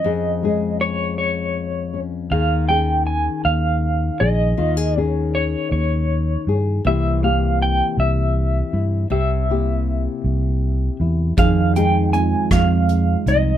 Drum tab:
HH |------|------|------|------|
SD |------|------|------|------|
BD |------|------|------|------|

HH |------|xxxxxx|
SD |------|---r--|
BD |------|o--o--|